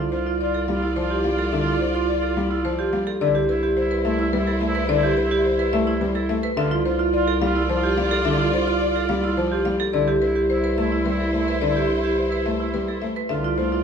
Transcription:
0.00 3.06 C2 medium
0.00 0.17 F4 medium
0.00 3.03 F4 medium
0.00 3.03 D5 medium
0.12 0.34 F4 soft
0.12 0.31 C5 medium
0.26 0.45 F4 medium
0.41 0.63 F4 medium
0.41 0.59 D5 medium
0.54 0.73 A4 medium
0.68 0.87 G3 medium
0.68 0.92 F4 medium
0.68 0.87 F5 medium
0.82 1.01 E4 medium
0.96 1.15 F3 medium
0.96 1.15 C5 medium
1.01 1.22 F4 medium
1.11 1.29 G4 medium
1.24 1.43 G3 medium
1.24 1.43 F5 medium
1.31 1.52 F4 medium
1.39 1.57 A4 medium
1.52 1.71 D3 medium
1.52 1.71 E5 medium
1.60 1.81 F4 medium
1.67 1.85 F4 medium
1.81 1.99 C5 medium
1.89 2.10 F4 medium
1.95 2.13 F4 medium
2.09 2.27 D5 medium
2.19 2.39 F4 medium
2.23 2.41 A4 medium
2.37 2.55 G3 medium
2.37 2.55 F5 medium
2.48 2.69 E4 medium
2.48 2.69 F4 medium
2.65 2.83 F3 medium
2.65 2.83 C5 medium
2.78 2.98 F4 soft
2.78 2.97 G4 medium
2.93 3.11 G3 medium
2.93 3.11 F5 medium
3.07 3.25 A4 medium
3.21 6.42 C2 medium
3.21 3.39 D3 medium
3.21 6.39 E4 medium
3.21 3.41 E4 soft
3.21 6.39 C5 medium
3.21 3.39 D5 medium
3.35 3.53 G4 medium
3.49 3.71 E4 medium
3.49 3.67 B4 medium
3.63 3.81 G4 medium
3.77 4.00 E4 medium
3.77 3.95 C5 medium
3.91 4.09 B4 medium
4.05 4.23 A3 medium
4.05 4.29 E4 medium
4.05 4.23 E5 medium
4.19 4.37 E4 medium
4.33 4.51 G3 medium
4.33 4.51 B4 medium
4.38 4.59 E4 medium
4.47 4.65 A4 medium
4.61 4.79 A3 medium
4.61 4.79 E5 medium
4.68 4.88 E4 medium
4.75 4.93 B4 medium
4.89 5.07 D3 loud
4.89 5.07 D5 medium
4.97 5.17 E4 medium
5.03 5.21 G4 medium
5.17 5.35 B4 medium
5.26 5.47 E4 medium
5.31 5.49 G4 medium
5.45 5.63 C5 medium
5.56 5.76 E4 medium
5.56 5.77 B4 medium
5.73 5.91 A3 loud
5.73 5.91 E5 medium
5.85 6.05 E4 medium
6.01 6.19 G3 medium
6.01 6.20 B4 medium
6.14 6.35 E4 soft
6.14 6.33 A4 medium
6.29 6.47 A3 medium
6.29 6.48 E5 medium
6.43 6.62 B4 loud
6.57 9.79 C2 medium
6.57 6.75 D3 loud
6.57 9.76 F4 medium
6.57 6.78 F4 soft
6.57 9.76 D5 medium
6.57 6.76 E5 loud
6.71 6.90 F4 medium
6.86 7.07 F4 medium
6.86 7.04 C5 medium
6.99 7.18 F4 medium
7.14 7.37 F4 medium
7.14 7.32 D5 medium
7.28 7.46 A4 loud
7.41 7.60 G3 medium
7.41 7.66 F4 medium
7.41 7.60 F5 loud
7.56 7.74 E4 medium
7.69 7.88 F3 medium
7.69 7.88 C5 medium
7.74 7.95 F4 medium
7.83 8.02 G4 medium
7.97 8.16 G3 medium
7.97 8.16 F5 medium
8.03 8.24 F4 medium
8.11 8.30 A4 loud
8.25 8.44 D3 loud
8.25 8.44 E5 loud
8.33 8.53 F4 medium
8.39 8.58 F4 medium
8.53 8.72 C5 medium
8.62 8.83 F4 medium
8.67 8.86 F4 medium
8.81 9.00 D5 medium
8.91 9.12 F4 medium
8.96 9.14 A4 medium
9.09 9.28 G3 medium
9.09 9.28 F5 loud
9.21 9.42 E4 medium
9.21 9.41 F4 medium
9.37 9.56 F3 medium
9.37 9.56 C5 medium
9.50 9.71 F4 soft
9.50 9.70 G4 medium
9.65 9.84 G3 medium
9.65 9.84 F5 medium
9.80 9.98 A4 medium
9.93 13.15 C2 medium
9.93 10.12 D3 medium
9.93 10.14 E4 soft
9.93 13.12 E4 medium
9.93 13.12 C5 medium
9.93 10.12 D5 medium
10.08 10.26 G4 medium
10.22 10.43 E4 soft
10.22 10.40 B4 medium
10.36 10.54 G4 medium
10.50 10.73 E4 medium
10.50 10.68 C5 medium
10.64 10.82 B4 medium
10.78 10.96 A3 medium
10.78 11.02 E4 medium
10.78 10.96 E5 medium
10.92 11.10 E4 medium
11.06 11.24 G3 medium
11.06 11.24 B4 medium
11.11 11.31 E4 medium
11.20 11.38 A4 medium
11.34 11.52 A3 medium
11.34 11.52 E5 medium
11.40 11.60 E4 medium
11.48 11.66 B4 medium
11.61 11.80 D3 medium
11.61 11.80 D5 medium
11.70 11.90 E4 medium
11.76 11.94 G4 medium
11.90 12.08 B4 medium
11.98 12.19 E4 medium
12.04 12.22 G4 medium
12.18 12.36 C5 medium
12.28 12.49 E4 medium
12.32 12.50 B4 medium
12.46 12.64 A3 medium
12.46 12.64 E5 medium
12.57 12.78 E4 soft
12.57 12.78 E4 medium
12.74 12.92 G3 medium
12.74 12.92 B4 medium
12.87 13.07 E4 soft
12.87 13.06 A4 medium
13.02 13.20 A3 medium
13.02 13.20 E5 medium
13.16 13.34 B4 medium
13.29 13.84 C2 medium
13.29 13.48 D3 medium
13.29 13.51 F4 soft
13.29 13.84 F4 medium
13.29 13.84 D5 medium
13.29 13.48 E5 medium
13.44 13.63 F4 medium
13.58 13.77 A3 medium
13.58 13.80 F4 medium
13.58 13.76 C5 medium
13.72 13.84 F4 medium

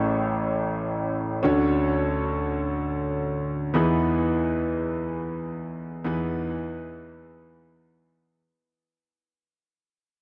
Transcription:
0.00 1.40 A1 medium
0.00 1.40 A2 medium
0.00 1.39 C#4 medium
0.00 1.40 E4 medium
0.00 1.40 G#4 medium
0.00 1.40 A4 medium
0.00 1.41 C#5 medium
1.43 3.71 D2 medium
1.43 3.71 D3 medium
1.43 3.70 C#4 medium
1.43 3.71 D4 medium
1.43 3.71 F#4 medium
1.43 3.71 A4 medium
1.43 3.71 C#5 medium
3.74 6.02 E2 medium
3.74 6.02 E3 medium
3.74 6.01 B3 medium
3.74 6.01 D#4 medium
3.74 6.02 E4 medium
3.74 6.02 G#4 medium
3.74 6.02 B4 medium
6.04 8.32 E2 medium
6.04 8.32 E3 medium
6.04 8.32 B3 medium
6.04 8.32 D#4 medium
6.04 8.32 E4 medium
6.04 8.33 G#4 medium
6.04 8.33 B4 medium

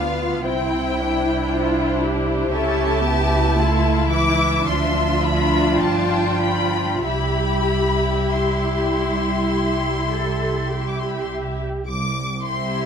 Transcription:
0.00 0.43 D2 soft
0.00 0.47 B3 soft
0.00 0.48 D4 soft
0.00 0.47 F4 soft
0.00 0.47 B4 soft
0.00 0.47 F5 medium
0.46 2.49 C2 soft
0.46 0.99 C4 soft
0.46 2.49 E4 medium
0.46 1.48 E4 soft
0.46 2.53 E4 soft
0.46 1.48 C5 soft
0.46 1.98 G5 medium
0.99 2.53 D4 soft
1.50 2.02 F4 medium
1.50 2.51 C5 soft
2.02 3.58 G4 medium
2.52 4.66 C#2 medium
2.52 3.04 C#4 medium
2.52 4.62 E4 medium
2.52 3.04 A4 medium
2.52 3.57 E5 medium
2.52 4.06 A5 medium
3.05 3.58 B3 medium
3.05 3.56 G4 medium
3.57 4.10 A3 medium
3.57 4.66 E4 medium
3.57 4.11 F4 medium
3.57 5.77 E5 medium
4.10 4.65 E3 medium
4.10 4.66 E4 medium
4.10 4.66 D6 medium
4.65 5.79 D2 medium
4.65 7.04 F3 medium
4.65 7.05 D4 medium
4.65 5.78 F4 medium
4.65 7.04 F4 medium
4.65 5.23 C6 medium
5.23 5.81 B5 medium
5.82 7.05 G1 soft
5.82 7.02 F4 medium
5.82 7.05 G5 medium
5.82 6.42 A5 medium
6.42 7.03 B5 medium
7.05 11.64 C2 soft
7.05 11.68 G3 soft
7.05 11.68 E4 soft
7.05 8.18 G4 soft
7.05 11.64 G4 soft
7.05 11.64 E5 soft
7.05 8.28 B5 medium
8.30 10.06 E4 soft
8.30 10.89 C6 soft
10.10 10.69 A4 soft
10.69 11.88 G4 soft
10.89 10.99 D6 soft
10.99 11.09 C6 soft
11.09 11.19 B5 soft
11.20 11.29 C6 soft
11.88 12.86 C2 medium
11.88 12.86 C2 soft
11.88 12.41 D6 medium
12.43 12.86 C4 soft
12.43 12.86 E4 soft
12.43 12.86 G4 soft
12.43 12.86 E5 soft
12.43 12.86 C6 medium

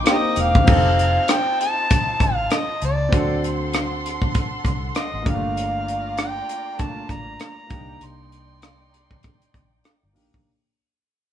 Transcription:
0.00 0.63 D#4 medium
0.00 0.63 G5 medium
0.00 0.63 D6 medium
0.04 0.66 A#3 medium
0.04 0.62 C4 soft
0.04 0.65 D#4 soft
0.04 0.66 G4 medium
0.04 cross-stick loud
0.04 closed hi-hat medium
0.10 0.16 G4 medium
0.10 0.16 C5 medium
0.10 0.42 D#5 medium
0.36 0.62 E1 medium
0.36 closed hi-hat medium
0.40 1.33 F5 loud
0.55 kick medium
0.64 1.17 F1 loud
0.64 3.06 C4 medium
0.64 3.07 D#4 medium
0.64 3.08 D#4 medium
0.64 3.08 G4 medium
0.64 3.08 A5 medium
0.64 kick loud
0.64 crash medium
0.68 3.08 F4 medium
0.68 3.09 A4 medium
0.99 closed hi-hat medium
1.28 1.60 G5 medium
1.28 cross-stick loud
1.28 closed hi-hat medium
1.61 2.25 A5 loud
1.61 closed hi-hat medium
1.90 kick medium
1.90 closed hi-hat medium
2.20 2.45 A1 medium
2.20 2.56 F5 medium
2.20 kick medium
2.20 closed hi-hat medium
2.50 2.83 D#5 medium
2.50 cross-stick loud
2.50 closed hi-hat medium
2.82 3.07 C#2 medium
2.82 3.40 D5 medium
2.82 closed hi-hat medium
3.09 4.18 D2 medium
3.09 5.21 C4 medium
3.09 5.21 D4 medium
3.09 5.22 F#4 medium
3.09 5.22 A4 medium
3.09 5.22 F#5 medium
3.09 5.22 C6 medium
3.13 5.23 A4 medium
3.13 kick loud
3.13 closed hi-hat medium
3.44 closed hi-hat medium
3.73 cross-stick loud
3.73 closed hi-hat medium
4.06 closed hi-hat medium
4.22 kick medium
4.35 kick loud
4.35 closed hi-hat medium
4.65 4.90 C2 medium
4.65 kick medium
4.65 cross-stick soft
4.65 closed hi-hat medium
4.95 5.28 D#5 medium
4.95 cross-stick loud
4.95 closed hi-hat medium
5.14 5.24 A1 medium
5.22 6.74 A#3 medium
5.22 6.75 D4 medium
5.22 6.76 F4 medium
5.22 kick loud
5.22 closed hi-hat medium
5.26 6.40 G1 medium
5.26 7.67 F4 medium
5.26 5.35 G4 medium
5.26 7.67 D5 medium
5.26 6.18 F5 loud
5.26 7.67 A#5 medium
5.35 6.78 A3 medium
5.57 closed hi-hat medium
5.88 closed hi-hat medium
6.17 6.82 G5 medium
6.17 cross-stick loud
6.17 closed hi-hat medium
6.49 closed hi-hat medium
6.77 7.72 A3 medium
6.77 7.66 A#3 soft
6.77 7.67 D4 soft
6.77 7.71 F4 soft
6.77 7.14 A5 medium
6.77 kick medium
6.77 closed hi-hat medium
7.09 7.34 A1 medium
7.09 7.42 A#5 medium
7.09 kick medium
7.09 cross-stick soft
7.09 closed hi-hat medium
7.40 8.06 A#5 medium
7.40 cross-stick loud
7.40 closed hi-hat medium
7.67 7.96 C2 medium
7.67 10.10 A#3 medium
7.67 10.11 D4 medium
7.67 10.12 D#4 medium
7.67 kick medium
7.67 closed hi-hat medium
7.71 10.43 D#4 medium
7.71 10.13 G4 medium
7.71 10.43 D5 medium
7.71 10.43 G5 medium
8.01 9.07 C2 loud
8.01 9.87 C6 loud
8.01 closed hi-hat medium
8.32 closed hi-hat medium
8.62 cross-stick loud
8.62 closed hi-hat medium
8.94 closed hi-hat medium
9.11 kick medium
9.23 kick medium
9.23 closed hi-hat medium
9.42 closed hi-hat medium
9.54 9.79 A#1 medium
9.54 kick medium
9.54 closed hi-hat medium
9.84 cross-stick loud
9.84 closed hi-hat medium
10.03 10.14 G1 medium
10.13 10.30 A#1 medium
10.13 10.45 A#3 medium
10.13 10.46 D4 soft
10.13 10.47 D#4 soft
10.13 10.47 G4 medium
10.13 open hi-hat medium
10.34 10.44 B1 medium
10.34 kick medium

